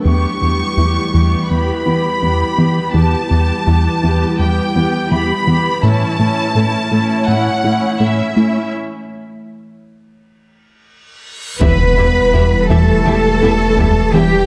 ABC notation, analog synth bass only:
X:1
M:4/4
L:1/8
Q:1/4=83
K:Edor
V:1 name="Analog synth bass" clef=bass
E,, E,, E,, E,, E,, E, E,, E, | E,, E,, E,, E,, E,, E, E,, E, | A,, A,, A,, A,, A,, A, A,, A, | z8 |
E,, E,, E,, E,, E,, E, E,, E, |]